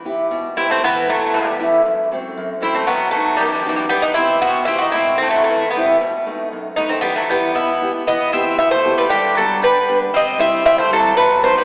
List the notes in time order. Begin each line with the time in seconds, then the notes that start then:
Already playing: E3
0.05 B3 E4 G4
0.31 B2
0.56 B3 C4 E4 G4
0.70 A3 C4
0.82 A2 E3 B3
1.06 F#3 A3 B3 E4
1.33 E2 E3 G3
1.59 A3 B3 E4
1.85 F#2
2.12 F#3 A3 C4
2.37 F#2
2.61 F#3 A3 C4 E4
2.75 A3 C4
2.87 B2 F#3 B3
3.11 F#3 A3
3.15 B3 D#4
3.37 F#2 D#3 G3
3.46 E3 G3
3.52 E3 G3
3.61 E3 G3
3.66 E3 F#3 G3 B3 D#4
3.76 E3 G3
3.89 E3 G3 B3
4.02 B3 D#4
4.14 B3 C4 E4 G4
4.42 B2 B3 F#4
4.65 B3 C4 E4 G4
4.78 D#4 F#4
4.92 A2 C4 E4
5.18 A3 C4 E4
5.22 A3
5.30 A3
5.36 F#3
5.44 A3
5.48 E2 E3
5.71 B3
5.75 G3 A3 C4 E4
6.01 B2
6.26 A3 B3 D#4
6.52 F#2
6.76 A3 B3 D#4
6.89 A3 C4
7.01 G3 B3
7.05 E3
7.16 F#3 A3
7.29 G3 B3 E4 G4
7.55 B2 B3 E4
7.81 B3 E4 G4
8.07 E3 B3 D#5
8.33 B3 C4 E4 G4 E5
8.58 B2 B3 E5
8.71 A3 C5
8.85 B3 E4 G4
8.98 G3 B4
9.09 G2 D3 G4
9.35 F#3 G3 B3 D4 A4
9.62 D3 G3 B4
9.89 G3 B3 D4
10.14 C3 C4 D#5
10.38 G3 C4 E4 E5
10.65 G2 C4 E5
10.78 A3 C5
10.91 F#3 G3 C4 E4 A4
11.17 B2 F#3 B4
11.42 F#3 A3 B3 D#4 C5
11.57 G3 B4